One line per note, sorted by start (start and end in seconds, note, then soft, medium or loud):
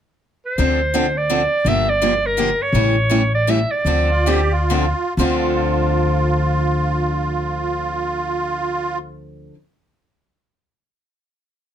0.46 1.19 C5 medium
0.58 1.44 D2 medium
0.58 0.79 D3 medium
0.58 0.79 F3 medium
0.58 0.79 C4 medium
0.58 0.79 D4 medium
0.58 0.79 A4 medium
0.94 1.05 D3 medium
0.94 1.05 F3 medium
0.94 1.05 C4 medium
0.94 1.05 D4 medium
0.94 1.05 A4 medium
1.18 1.70 D5 medium
1.30 1.41 D3 medium
1.30 1.41 F3 medium
1.30 1.41 C4 medium
1.30 1.41 D4 medium
1.30 1.41 A4 medium
1.65 2.51 G1 medium
1.65 1.86 D3 medium
1.65 1.87 F3 medium
1.65 1.86 A#3 medium
1.65 1.87 D4 medium
1.65 1.87 G4 medium
1.65 1.91 E5 loud
1.89 2.28 D5 loud
2.02 2.12 D3 medium
2.02 2.13 F3 medium
2.02 2.13 A#3 medium
2.02 2.13 D4 medium
2.02 2.13 G4 medium
2.26 2.64 A#4 medium
2.37 2.48 D3 medium
2.37 2.49 F3 medium
2.37 2.48 A#3 medium
2.37 2.49 D4 medium
2.37 2.49 G4 medium
2.62 3.33 C#5 medium
2.72 3.62 A1 medium
2.72 2.95 C#3 medium
2.72 2.95 E3 medium
2.72 2.94 G3 medium
2.72 2.95 A3 medium
2.72 2.95 C#4 medium
2.72 2.95 E4 medium
2.72 2.95 G4 medium
2.72 2.95 A4 medium
3.10 3.21 C#3 medium
3.10 3.21 E3 medium
3.10 3.21 G3 medium
3.10 3.21 A3 medium
3.10 3.21 C#4 medium
3.10 3.21 E4 medium
3.10 3.21 G4 medium
3.10 3.21 A4 medium
3.35 3.51 D5 medium
3.47 3.58 C#3 medium
3.47 3.59 E3 medium
3.47 3.58 G3 medium
3.47 3.59 A3 medium
3.47 3.59 C#4 medium
3.47 3.59 E4 medium
3.47 3.59 G4 medium
3.47 3.59 A4 medium
3.47 3.73 E5 medium
3.71 4.71 D5 medium
3.85 4.91 D2 medium
3.85 4.09 D3 medium
3.85 4.09 F3 medium
3.85 4.09 C4 medium
3.85 4.09 D4 medium
3.85 4.09 A4 medium
4.10 4.27 F4 medium
4.26 4.39 D3 medium
4.26 4.39 F3 medium
4.26 4.39 C4 medium
4.26 4.40 D4 medium
4.26 4.53 G4 medium
4.26 4.40 A4 medium
4.51 5.14 F4 medium
4.70 4.84 D3 medium
4.70 4.84 F3 medium
4.70 4.84 C4 medium
4.70 4.84 D4 medium
4.70 4.85 A4 medium
5.17 9.48 D2 medium
5.17 9.54 D3 medium
5.17 9.54 F3 medium
5.17 9.55 C4 medium
5.17 9.56 D4 medium
5.17 8.98 F4 medium
5.21 9.56 A4 medium